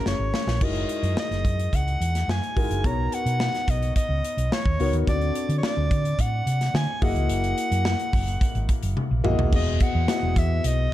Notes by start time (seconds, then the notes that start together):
Already playing: G#3 C#4 E4 F#4 A#4
0.06 F#1 C#5, snare
0.19 G#1
0.34 snare
0.47 A#1, snare
0.61 G#3 D#4 E4 F#4 A#4 D#5, kick, crash
0.75 closed hi-hat
0.89 closed hi-hat
1.03 F#2, closed hi-hat
1.17 D#5, snare
1.31 F#1, snare, closed hi-hat
1.45 F#2, kick, closed hi-hat
1.59 closed hi-hat
1.73 C#2 F#5, kick, closed hi-hat
1.88 closed hi-hat
2.00 E2, closed hi-hat
2.15 snare, closed hi-hat
2.28 F#2 G#5, snare
2.43 closed hi-hat
2.56 G#1 G#3 D#4 E4 F#4 A#4, kick, open hi-hat
2.70 F#1, closed hi-hat
2.84 B1 B3 D#4 F#4 A#4 C#5 A#5, kick, closed hi-hat
3.12 F#5, closed hi-hat
3.26 B2, closed hi-hat
3.40 snare
3.54 snare, closed hi-hat
3.68 B1 D#5, kick, closed hi-hat
3.82 closed hi-hat
3.96 D#5, kick, closed hi-hat
4.09 C#2
4.24 closed hi-hat
4.37 B1, closed hi-hat
4.52 C#5, snare
4.65 D#2, kick
4.79 C#2 B3 D#4 F#4 A#4 C#5, open hi-hat
4.93 D#2, closed hi-hat
5.07 D2 C4 D4 F#4 A4 D5, kick, closed hi-hat
5.21 closed hi-hat
5.35 closed hi-hat
5.49 D3, closed hi-hat
5.58 C#5
5.63 D5, snare
5.77 D2
5.91 D3, kick, closed hi-hat
6.05 closed hi-hat
6.19 A2 F#5, kick, closed hi-hat
6.46 C3, closed hi-hat
6.61 snare, closed hi-hat
6.74 D3 G#5, snare
7.02 F#1 A#3 E4 F#4 G#4 D#5 F#5, kick, open hi-hat
7.16 C#2, closed hi-hat
7.29 F#1, closed hi-hat
7.44 closed hi-hat
7.58 closed hi-hat
7.71 F#2, closed hi-hat
7.85 snare
7.99 closed hi-hat
8.13 F#1, kick, open hi-hat
8.28 closed hi-hat
8.41 kick, closed hi-hat
8.55 G#1, closed hi-hat
8.69 kick, closed hi-hat
8.83 F#1, closed hi-hat
8.97 high tom
9.11 A#1
9.24 A#1 A#3 E4 F#4 G#4 D#5, mid tom
9.39 B1, floor tom
9.52 E1 B3 E4 F#4 G#4 D#5, kick, crash
9.80 F#5, kick, closed hi-hat
9.95 E2
10.08 B3 E4 F#4 G#4 D#5, snare, closed hi-hat
10.23 E1
10.36 E2 E5, kick, closed hi-hat
10.64 B1 D#5, closed hi-hat